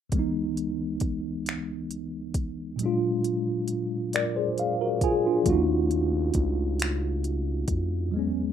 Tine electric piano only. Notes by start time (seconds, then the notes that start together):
0.10 C#2 E3
0.14 G#3 B3
0.19 D#4
2.76 A#2 F#3
2.81 G#3 D4
2.86 F4
4.14 A#4 D5
4.36 G#4 C5
4.59 F5
4.81 F#4 A#4
5.04 F4 G#4 G#5
5.26 D4 F4
5.43 F3 A3
5.49 C#4 D#4 F#4
8.09 E2 F#3
8.14 G#3 B3
8.19 C#4